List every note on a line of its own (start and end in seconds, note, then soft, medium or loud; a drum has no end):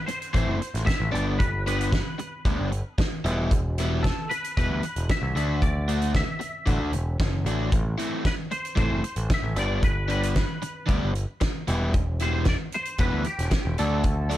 0.06 0.32 C5 medium
0.06 muted overdriven electric guitar stroke soft
0.06 closed hi-hat medium
0.22 closed hi-hat medium
0.33 0.45 A1 medium
0.33 0.60 E3 medium
0.33 0.60 A3 medium
0.33 0.60 C4 medium
0.33 0.59 E4 medium
0.33 0.86 C5 medium
0.33 kick medium
0.33 closed hi-hat medium
0.48 0.58 F#1 medium
0.60 muted overdriven electric guitar stroke medium
0.60 closed hi-hat medium
0.74 0.85 A1 medium
0.74 snare soft
0.74 closed hi-hat medium
0.85 1.12 E5 medium
0.85 muted overdriven electric guitar stroke soft
0.85 kick loud
0.85 snare loud
0.85 closed hi-hat medium
1.00 1.11 A1 medium
1.12 2.00 G1 medium
1.12 1.39 D3 medium
1.12 1.39 G3 medium
1.12 1.39 B3 medium
1.12 1.39 D4 medium
1.12 1.38 D5 medium
1.12 closed hi-hat medium
1.39 1.64 B4 medium
1.39 muted overdriven electric guitar stroke soft
1.39 kick loud
1.39 closed hi-hat medium
1.67 1.91 D3 medium
1.67 1.91 G3 medium
1.67 1.92 B3 medium
1.67 1.92 D4 medium
1.67 2.68 B4 medium
1.67 closed hi-hat medium
1.81 closed hi-hat medium
1.92 muted overdriven electric guitar stroke soft
1.92 kick medium
1.92 snare loud
1.92 closed hi-hat medium
2.18 muted overdriven electric guitar stroke soft
2.18 closed hi-hat medium
2.45 2.56 D2 medium
2.45 2.71 D3 medium
2.45 2.71 G3 medium
2.45 2.71 B3 medium
2.45 2.70 D4 medium
2.45 kick medium
2.45 closed hi-hat soft
2.60 2.81 G1 medium
2.71 muted overdriven electric guitar stroke soft
2.71 closed hi-hat medium
2.98 muted overdriven electric guitar stroke soft
2.98 kick loud
2.98 snare loud
2.98 closed hi-hat medium
3.25 4.11 E1 loud
3.25 3.51 E3 medium
3.25 3.52 G3 medium
3.25 3.51 B3 medium
3.25 3.51 E4 medium
3.25 closed hi-hat medium
3.51 muted overdriven electric guitar stroke soft
3.51 kick loud
3.51 closed hi-hat medium
3.78 4.03 E3 medium
3.78 4.03 G3 medium
3.78 4.04 B3 medium
3.78 4.03 E4 medium
3.78 closed hi-hat medium
4.03 4.30 A4 medium
4.03 muted overdriven electric guitar stroke soft
4.03 kick medium
4.03 snare medium
4.03 closed hi-hat medium
4.30 4.56 B4 medium
4.30 muted overdriven electric guitar stroke soft
4.30 closed hi-hat medium
4.44 closed hi-hat medium
4.57 4.68 E1 medium
4.57 4.84 E3 medium
4.57 4.84 G3 medium
4.57 4.84 B3 medium
4.57 4.83 E4 medium
4.57 5.11 B4 medium
4.57 kick medium
4.57 closed hi-hat medium
4.69 4.80 D2 medium
4.83 muted overdriven electric guitar stroke medium
4.83 closed hi-hat medium
4.96 5.07 E1 medium
4.96 closed hi-hat medium
5.09 5.62 E5 loud
5.09 muted overdriven electric guitar stroke soft
5.09 kick loud
5.09 snare loud
5.09 closed hi-hat medium
5.22 5.33 C2 medium
5.35 6.22 D2 medium
5.35 5.62 D3 medium
5.35 5.62 A3 medium
5.35 5.63 D4 medium
5.35 5.62 F#4 medium
5.35 closed hi-hat medium
5.62 6.16 D5 loud
5.62 muted overdriven electric guitar stroke soft
5.62 kick loud
5.62 closed hi-hat medium
5.89 6.14 D3 medium
5.89 6.13 A3 medium
5.89 6.13 D4 medium
5.89 6.14 F#4 medium
5.89 closed hi-hat medium
6.02 closed hi-hat medium
6.14 7.17 E5 medium
6.14 muted overdriven electric guitar stroke soft
6.14 kick loud
6.14 snare medium
6.14 closed hi-hat medium
6.40 muted overdriven electric guitar stroke soft
6.40 closed hi-hat medium
6.66 6.78 A1 medium
6.66 6.93 D3 medium
6.66 6.93 A3 medium
6.66 6.92 D4 medium
6.66 6.91 F#4 medium
6.66 kick medium
6.66 closed hi-hat medium
6.79 6.91 D2 medium
6.92 7.17 E1 medium
6.92 muted overdriven electric guitar stroke medium
6.92 closed hi-hat medium
7.20 7.44 F#1 medium
7.20 muted overdriven electric guitar stroke soft
7.20 kick loud
7.20 snare loud
7.20 closed hi-hat medium
7.45 7.69 A1 medium
7.45 7.73 D3 medium
7.45 7.72 A3 medium
7.45 7.73 D4 medium
7.45 7.73 F#4 medium
7.45 closed hi-hat medium
7.72 7.94 A1 medium
7.72 muted overdriven electric guitar stroke soft
7.72 kick loud
7.72 closed hi-hat medium
7.98 8.23 E3 medium
7.98 8.23 A3 medium
7.98 8.23 C4 medium
7.98 8.24 E4 medium
7.98 closed hi-hat soft
8.24 8.33 B4 medium
8.24 muted overdriven electric guitar stroke soft
8.24 kick loud
8.24 snare loud
8.24 closed hi-hat medium
8.51 8.78 C5 medium
8.51 muted overdriven electric guitar stroke soft
8.51 closed hi-hat medium
8.65 closed hi-hat medium
8.76 8.89 A1 medium
8.76 9.03 E3 medium
8.76 9.03 A3 medium
8.76 9.02 C4 medium
8.76 9.03 E4 medium
8.76 9.33 C5 medium
8.76 kick loud
8.76 closed hi-hat medium
8.90 9.01 F#1 medium
9.03 muted overdriven electric guitar stroke soft
9.03 closed hi-hat medium
9.16 9.28 A1 medium
9.16 closed hi-hat medium
9.30 muted overdriven electric guitar stroke soft
9.30 kick loud
9.30 snare loud
9.30 closed hi-hat medium
9.34 9.59 E5 medium
9.43 9.54 A1 medium
9.56 10.43 G1 medium
9.56 9.83 D3 medium
9.56 9.83 G3 medium
9.56 9.83 B3 medium
9.56 9.83 D4 medium
9.56 9.84 D5 medium
9.56 closed hi-hat medium
9.83 10.10 B4 medium
9.83 muted overdriven electric guitar stroke soft
9.83 kick loud
9.83 closed hi-hat medium
10.08 10.35 D3 medium
10.08 10.35 G3 medium
10.08 10.35 B3 medium
10.08 10.35 D4 medium
10.08 11.12 B4 medium
10.08 closed hi-hat medium
10.23 closed hi-hat medium
10.36 muted overdriven electric guitar stroke soft
10.36 kick medium
10.36 snare medium
10.36 closed hi-hat medium
10.62 muted overdriven electric guitar stroke soft
10.62 closed hi-hat medium
10.87 11.00 D2 medium
10.87 11.12 D3 medium
10.87 11.13 G3 medium
10.87 11.12 B3 medium
10.87 11.12 D4 medium
10.87 kick loud
10.87 closed hi-hat medium
11.03 11.24 G1 medium
11.13 muted overdriven electric guitar stroke medium
11.13 closed hi-hat medium
11.41 muted overdriven electric guitar stroke soft
11.41 kick loud
11.41 snare loud
11.41 closed hi-hat medium
11.68 12.55 E1 medium
11.68 11.93 E3 medium
11.68 11.93 G3 medium
11.68 11.93 B3 medium
11.68 11.94 E4 medium
11.68 closed hi-hat medium
11.94 muted overdriven electric guitar stroke soft
11.94 kick loud
11.94 closed hi-hat medium
12.19 12.48 E3 medium
12.19 12.48 G3 medium
12.19 12.47 B3 medium
12.19 12.47 E4 medium
12.19 12.48 C5 medium
12.19 closed hi-hat medium
12.45 12.55 D5 medium
12.45 muted overdriven electric guitar stroke soft
12.45 kick loud
12.45 snare medium
12.45 closed hi-hat medium
12.72 13.00 C5 medium
12.72 muted overdriven electric guitar stroke soft
12.72 closed hi-hat medium
12.85 closed hi-hat medium
12.98 13.10 E1 medium
12.98 13.25 E3 medium
12.98 13.26 G3 medium
12.98 13.25 B3 medium
12.98 13.25 E4 medium
12.98 13.24 B4 medium
12.98 kick loud
12.98 closed hi-hat medium
13.13 13.24 D2 medium
13.24 13.78 G4 medium
13.24 muted overdriven electric guitar stroke medium
13.24 closed hi-hat medium
13.39 13.49 E1 medium
13.39 snare soft
13.39 closed hi-hat medium
13.51 muted overdriven electric guitar stroke soft
13.51 kick loud
13.51 snare loud
13.51 closed hi-hat medium
13.65 13.76 E1 medium
13.78 14.37 D2 loud
13.78 14.04 D3 medium
13.78 14.04 F#3 medium
13.78 14.04 A3 medium
13.78 14.04 D4 loud
13.78 14.37 A4 medium
13.78 closed hi-hat medium
14.04 muted overdriven electric guitar stroke soft
14.04 kick medium
14.04 closed hi-hat medium
14.29 14.37 D3 medium
14.29 14.37 F#3 medium
14.29 14.37 A3 medium
14.29 14.37 D4 loud
14.29 closed hi-hat medium